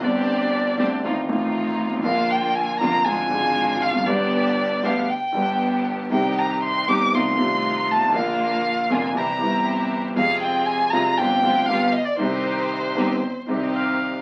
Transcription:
<<
  \new Staff \with { instrumentName = "Violin" } { \time 4/4 \key c \minor \tempo 4 = 118 d''2 r2 | f''8 g''8 aes''8 bes''8 aes''4. f''8 | d''4. f''8 g''4. r8 | g''8 bes''8 c'''8 d'''8 c'''4. a''8 |
f''4. aes''8 bes''4. r8 | f''8 g''8 aes''8 bes''8 g''4 f''8 ees''16 d''16 | c''2. r4 | }
  \new Staff \with { instrumentName = "Bandoneon" } { \time 4/4 \key c \minor r1 | r1 | r1 | r1 |
r1 | r1 | r2. f''4 | }
  \new Staff \with { instrumentName = "String section" } { \time 4/4 \key c \minor <c' d' g'>4. <c' d' g'>8 <a ees' f'>8 <a ees' f'>4. | <bes d' f'>4. <bes d' f'>8 <aes d' f'>8 <aes d' f'>4. | <b d' g'>4. <b d' g'>8 r8 <b d' g'>4. | <c' ees' g'>4. <c' ees' g'>8 <a ees' f'>8 <a ees' f'>4. |
<bes d' f'>4. <bes d' f'>8 <c' e' g'>8 <c' e' g'>4. | <c' f' aes'>4. <c' f' aes'>8 <c' f' g'>8 <c' f' g'>8 <b f' g'>8 r8 | <c' ees' g'>4. <c' ees' g'>8 r8 <c' ees' g'>4. | }
  \new Staff \with { instrumentName = "Grand piano" } { \clef bass \time 4/4 \key c \minor << { <g,, g, d g c' g'>4. <d, d g c' g'>8 <a,, a, ees a c' f'>8 <a,, a, ees a c' f'>4. | <bes,, bes, d f bes f'>4. <f,, f, d f bes f'>8 <aes,, aes, d f aes f'>8 <aes,, aes, d f aes f'>4. | <g,, g, d g b g'>4. <d, d g b g'>8 r8 <g,, g, d g b g'>4. | <c, c ees g c' g'>4. <g,, g, ees g c' g'>8 <c, c ees a c' f'>8 <c, c ees a c' f'>4. |
<bes,, bes, d f bes f'>4. <f,, f, d f bes f'>8 <c, c e g e'>8 <g,, g, c e g e'>4. | <f, c f aes f'>4. <c, c f aes f'>8 <g,, g, d g c' f'>8 <d, d g c' f'>8 <g,, g, d g b f'>8 r8 | <c, c ees g c' g'>4. <g,, g, ees g c' g'>8 r8 <c, c ees g c' g'>4. | } \\ { r2. r8 r32 g,,32 aes,,32 a,,32 | r2. r8 r32 e,32 f,32 fis,32 | r1 | r2. r8 r32 g,,32 aes,,32 a,,32 |
r1 | r1 | r1 | } >> }
  \new Staff \with { instrumentName = "Upright bass" } { \clef bass \time 4/4 \key c \minor g,,4~ g,,16. r32 d,16. r32 a,,16. r32 a,,4~ a,,32 g,,32 aes,,32 a,,32 | bes,,4~ bes,,16. r32 f,,16. r32 aes,,16. r32 aes,,4~ aes,,32 e,,32 f,,32 fis,,32 | g,,4~ g,,16. r32 d,16. r8 r32 g,,4~ g,,16. r32 | c,4~ c,16. r32 g,,16. r32 c,16. r4 r16 g,,32 aes,,32 a,,32 |
bes,,4~ bes,,16. r32 f,,16. r8 r32 g,,4~ g,,16. r32 | f,4~ f,16. r32 c,16. r32 g,,16. r32 d,16. r32 g,,16. r8 r32 | c,4~ c,16. r32 g,,16. r8 r32 c,4~ c,16. r32 | }
>>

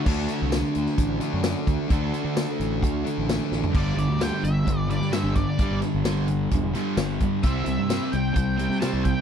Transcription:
<<
  \new Staff \with { instrumentName = "Lead electric guitar" } { \time 4/4 \key d \dorian \tempo 4 = 130 r1 | r1 | d''8 d''8 g''8 e''4 d''8 e''8 d''8~ | d''8 r2. r8 |
e''4. g''8 g''8 g''8 a''8 g''8 | }
  \new Staff \with { instrumentName = "Distorted electric guitar" } { \clef bass \time 4/4 \key d \dorian <d a d'>2~ <d a d'>8 <d a d'>8 <d a d'>4 | <d a d'>2~ <d a d'>8 <d a d'>8 <d a d'>4 | <g, d g>8 <g, d>8 <g, d g>8 <g, d>8 <g, d>8 <g, d>8 <g, d g>8 <g, d>8 | <g, d g>8 <g, d>8 <g, d g>8 <g, d>8 <g, d>8 <g, d g>8 <g, d>8 <g, d>8 |
<c g c'>8 <c g>8 <c g c'>8 <c g>8 <c g>8 <c g>8 <c g c'>8 <c g>8 | }
  \new Staff \with { instrumentName = "Overdriven electric guitar" } { \clef bass \time 4/4 \key d \dorian <d d' fis' a'>1 | <d d' fis' a'>1 | <g, d g>8 <g, d>8 <g, d g>8 <g, d>8 <g, d>8 <g, d>8 <g, d g>8 <g, d>8 | <g, d g>8 <g, d>8 <g, d g>8 <g, d>8 <g, d>8 <g, d g>8 <g, d>8 <g, d>8 |
<c g c'>8 <c g>8 <c g c'>8 <c g>8 <c g>8 <c g>8 <c g c'>8 <c g>8 | }
  \new Staff \with { instrumentName = "Overdriven electric guitar" } { \clef bass \time 4/4 \key d \dorian r1 | r1 | <g, d g>2~ <g, d g>8 <g, d g>8 <g, d g>4 | <g, d g>2~ <g, d g>8 <g, d g>8 <g, d g>4 |
<c g c'>2~ <c g c'>8 <c g c'>8 <c g c'>4 | }
  \new Staff \with { instrumentName = "Fingered electric bass" } { \clef bass \time 4/4 \key d \dorian d,8 r16 c,8 r16 d,16 r16 a,,8 r16 fis,8 r16 d,16 r16 | d,8 r16 d8 r16 a,,8 d,8 r16 a,,8 r16 a,,16 r16 | g,,8 g,,16 d,8 r16 g,,8 g,,8. g,8 g,,8 r16 | r16 g,,16 r16 g,,4~ g,,16 e,,8 r8 g,,8 g,8 |
c,8 c,16 g,8 r16 c,8 c,8. c8 c,8 r16 | }
  \new DrumStaff \with { instrumentName = "Drums" } \drummode { \time 4/4 <cymc bd>8 hh8 <hh sn tamb>8 hh16 sn16 <hh bd>8 hh8 <hh sn tamb>8 <hh bd>8 | <hh bd>8 hh8 <hh sn tamb>8 hh8 <hh bd>8 hh8 <hh sn tamb>8 sn16 tomfh16 | <cymc bd>8 hh8 <hh sn tamb>8 hh8 <hh bd>8 hh16 sn16 <hh sn tamb>8 <hh bd>8 | <hh bd>8 <hh sn>8 <hh sn tamb>8 hh8 <hh bd>8 hh8 <hh sn tamb>8 <hh bd>8 |
<hh bd>8 hh8 <hh sn tamb>8 hh8 <hh bd>8 hh16 sn16 <hh sn tamb>8 <hh bd>8 | }
>>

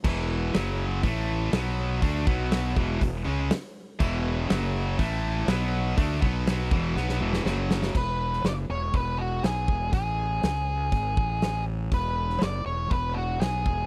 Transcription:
<<
  \new Staff \with { instrumentName = "Lead electric guitar" } { \time 4/4 \key fis \dorian \tempo 4 = 121 r1 | r1 | r1 | r1 |
\key e \mixolydian b'4 d''8 cis''8 b'8 fis'8 gis'4 | gis'2.~ gis'8 r8 | b'4 d''8 cis''8 b'8 fis'8 gis'4 | }
  \new Staff \with { instrumentName = "Distorted electric guitar" } { \clef bass \time 4/4 \key fis \dorian <e, b, e>4 <fis, cis fis>4 <a, e a>4 <b, fis b>4 | <d a d'>8 <b, fis b>4 <e, b, e>8 <e, b,>8 <cis gis cis'>8 r4 | <e, b, e>4 <fis, cis fis>4 <a, e a>4 <b, fis b>4 | <d a d'>8 <b, fis b>4 <e, b, e>8 <b, fis b>8 <e, b, e>8 <fis, cis fis>4 |
\key e \mixolydian r1 | r1 | r1 | }
  \new Staff \with { instrumentName = "Fingered electric bass" } { \clef bass \time 4/4 \key fis \dorian e,,4 fis,,4 a,,4 b,,4 | d,8 b,,4 e,,8 e,,8 cis,8 r4 | e,,4 fis,,4 a,,4 b,,4 | d,8 b,,4 e,,8 b,,8 e,,8 fis,,4 |
\key e \mixolydian e,,4 fis,,8 e,,8 e,,4 b,,8 e,,8 | a,,4 cis,4 gis,,8 a,,4. | e,,4 fis,,8 e,,8 e,,4 b,,8 e,,8 | }
  \new DrumStaff \with { instrumentName = "Drums" } \drummode { \time 4/4 <cymc bd>4 <hho sn>4 <hho bd>4 <hho sn>4 | <hho bd>8 bd8 <hho sn>8 bd8 <hho bd>4 <hho sn>4 | <cymc bd>4 <hho sn>4 <hho bd>4 <hho sn>4 | <hho bd>8 bd8 <hho sn>8 bd8 sn16 sn8 sn16 sn8 sn16 sn16 |
<cymc bd>8. sn16 <hho sn>4 <hho bd>4 <hho sn>8 bd8 | <hho bd>4 <hho sn>4 <hho bd>8 bd8 <hho sn>4 | <hho bd>8. sn16 <hho sn>4 <hho bd>4 <hho sn>8 bd8 | }
>>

